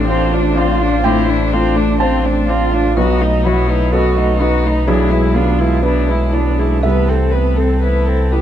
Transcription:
Already playing: A1 A3 C4 D4 C5 F5
0.08 C4 D4 F4 C5
0.32 A3 D4 F4
0.55 C4 D4 F4
0.80 A3 D4
1.03 A2 C4 D4 E4 F4 G5
1.28 A3 D4 A4
1.53 A3 C4 D4 F4
1.76 A3 D4
2.00 C4 F4 A4 C5 A5
2.24 A3 D4 A4
2.48 C4 D4 F4
2.71 A3 D4 F4
2.96 B1 A3 B3 D#4 F#4 B4 D#5
3.21 A3 D#4 D#5
3.44 F#3 B3 E4 F#4 F#5
3.67 A3 D#4 B4
3.91 B3 F#4 A4 B4 D#5
4.15 A3 D#4 D#5
4.39 B3 D#4 F#4 B4
4.64 A3 D#4
4.86 B1 E3 B3 D4 E4 G#4
5.10 G#3 E4 B4
5.34 B3 D4 F4 G#4
5.59 G#3 E4
5.82 B3 D4 E4 B4
6.07 G#3 E4 B4
6.33 B3 D4 E4
6.58 G#3 E4 G#4
6.83 C2 B3 C4 A4 B4 E5
7.07 C4 A4 C5
7.31 B3 B4 E5
7.56 C4 A4
7.80 E4 A4 B4 C5
7.85 B3
8.06 C4 A4 C5
8.32 B3 E4 G4 A4 B4

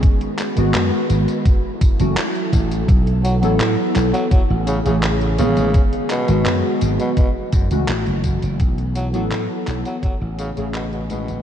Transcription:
Already playing: D#3 G#3 B3 G#4
0.03 G#3 F#4 B4, kick, closed hi-hat, tambourine
0.21 closed hi-hat
0.39 clap, closed hi-hat, tambourine
0.55 G#1 D#3 G#3 B3 F#4, closed hi-hat, tambourine
0.74 F#2, clap, closed hi-hat, tambourine
1.10 G#1, closed hi-hat, tambourine
1.28 closed hi-hat, tambourine
1.45 F#3 E4 A4, kick, closed hi-hat, tambourine
1.81 kick, closed hi-hat, tambourine
1.99 F#1 E3 A3 C#4 F#4, closed hi-hat, tambourine
2.17 clap, closed hi-hat, tambourine
2.35 closed hi-hat
2.53 A1, kick, closed hi-hat, tambourine
2.71 closed hi-hat, tambourine
2.88 B1 E3 B3, kick, closed hi-hat, tambourine
3.07 closed hi-hat
3.24 F#3, closed hi-hat, tambourine
3.41 A1 F#3 B3 E4 A4, closed hi-hat, tambourine
3.60 A2, clap, closed hi-hat, tambourine
3.96 B1, clap, closed hi-hat, tambourine
4.13 F#3, closed hi-hat, tambourine
4.31 C#3 F#3 C#4 G#4, muted slap bass stroke, kick, closed hi-hat, tambourine
4.50 A1
4.67 C#3, closed hi-hat, tambourine
4.85 A1 C#3 E3 A3 C#4 G#4, closed hi-hat, tambourine
5.03 clap, closed hi-hat, tambourine
5.21 closed hi-hat
5.37 A1 C#3 D#3 G#3 B3 G#4, closed hi-hat, tambourine
5.57 A1, closed hi-hat, tambourine
5.74 F#3 B3, kick, closed hi-hat, tambourine
5.93 closed hi-hat
6.10 B2, clap, closed hi-hat, tambourine
6.28 G#1 D#3 G#3 B3 F#4, closed hi-hat, tambourine
6.46 F#2, clap, closed hi-hat, tambourine
6.81 G#1, closed hi-hat, tambourine
7.00 B2, closed hi-hat, tambourine
7.17 B2 E3 A3 F#4, kick, closed hi-hat, tambourine
7.53 F#2, kick, closed hi-hat, tambourine
7.71 C#2 E3 A3 C#4 F#4, closed hi-hat, tambourine
7.88 A1, clap, closed hi-hat, tambourine
8.06 F#1, closed hi-hat
8.24 kick, closed hi-hat, tambourine
8.43 F#1, closed hi-hat, tambourine
8.60 B1 B3 A4, kick, closed hi-hat, tambourine
8.78 closed hi-hat
8.95 F#3, closed hi-hat, tambourine
9.13 A1 F#3 B3 E4 A4, closed hi-hat, tambourine
9.31 A2, clap, closed hi-hat, tambourine
9.67 B1, clap, closed hi-hat, tambourine
9.85 F#3, closed hi-hat, tambourine
10.03 C#3 F#3 C#4 G#4, muted slap bass stroke, kick, closed hi-hat, tambourine
10.22 A1
10.39 C#3, closed hi-hat, tambourine
10.56 A1 C#3 E3 A3 C#4 G#4, closed hi-hat, tambourine
10.74 B2, clap, closed hi-hat, tambourine
10.93 B2, closed hi-hat
11.09 A1 B2 D#3 G#3 B3 G#4, closed hi-hat, tambourine
11.28 A1, closed hi-hat, tambourine

